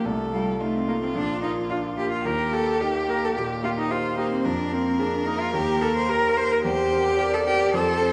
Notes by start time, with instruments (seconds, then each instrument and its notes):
0.05 grand piano C2, cello A3, violin A4
0.33 cello G3, grand piano A3 F4
0.60 cello A3, grand piano D#4 F4, violin F4
0.76 cello C4
0.88 grand piano A3 F4, cello A#3
1.02 cello C4
1.15 grand piano A#1, cello D4
1.42 grand piano A#3 F4, cello D#4
1.70 grand piano D4 F4, cello F4
1.97 grand piano A#3 F4, cello G4
2.11 cello F4
2.24 grand piano D#2, violin G4, cello A#4
2.52 grand piano A#3 G4, cello A4
2.80 grand piano D#4 G4, cello G4
3.08 grand piano A#3 G4, cello A#4
3.24 cello A4
3.36 grand piano A#2, cello G4
3.63 grand piano A#3 G4, cello F4
3.78 cello D#4
3.90 grand piano D#4 G4, cello F4, violin C5
4.18 grand piano A#3 G4, cello D#4
4.31 cello C4
4.45 grand piano F2, cello D4, violin A#4
4.72 grand piano A#3 A#4, cello C4
4.99 cello D4, grand piano G#4 A#4
5.26 grand piano A#3 A#4, cello D#4
5.41 cello F4
5.53 grand piano D#2, cello G4
5.81 grand piano A#3 A#4, cello A4
5.96 cello C5
6.09 grand piano G4 A#4, cello A#4
6.37 grand piano A#3 A#4, cello C5
6.52 cello A#4
6.65 grand piano E2, cello G4, violin C5
6.92 grand piano C4 A#4
7.19 grand piano G4 A#4, violin D5
7.34 cello A4
7.46 grand piano C4 A#4, cello G4
7.74 grand piano F2, cello A4, violin C5
8.01 grand piano C4 A4